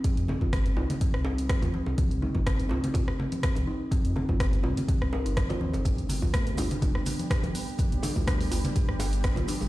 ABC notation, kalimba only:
X:1
M:4/4
L:1/16
Q:"Swing 16ths" 1/4=124
K:Cm
V:1 name="Kalimba"
G z C z C z E z C z C z G z C z | C z E z C z C z G z C z C z E z | C z C z G z C z C z B E C c C z | G z =B, z B, z D z B, z B, z G z B, z |
=B, z D z B, z B, z G z B, z B, z D z |]